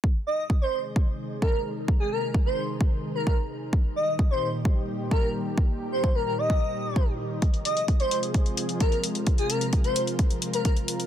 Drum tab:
HH |----------------|----------------|----------------|----------------|
BD |o---o---o---o---|o---o---o---o---|o---o---o---o---|o---o---o---o---|

HH |xxxxxxxxxxxxxxxx|xxxxxxxxxxxxxxxx|
BD |o---o---o---o---|o---o---o---o---|